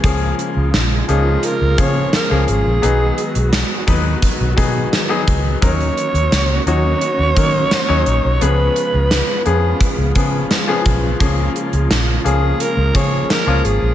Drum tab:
HH |x-x-x-x-x-x-x-x-|x-xxx-x-x-x-x-x-|xxxxx-x-x-x-x-x-|x-x-x-x-x-x-x-x-|
SD |----o-------o---|----o-------o---|----o-------o---|----o-------o---|
BD |o---------o-----|------o-o-o---o-|o---------o-----|--------o-o---o-|

HH |x-xxx-x-x-x-x-x-|
SD |----o-------o---|
BD |o---------o-----|